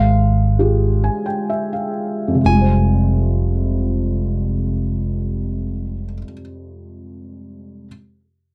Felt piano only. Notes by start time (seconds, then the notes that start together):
Already playing: G#3
0.59 F4 G4 G#4
1.04 G#5
1.26 G5
1.50 E5
1.73 F5
2.28 F2
2.35 C3
2.41 G#3
2.48 F4
2.54 G3
2.61 C5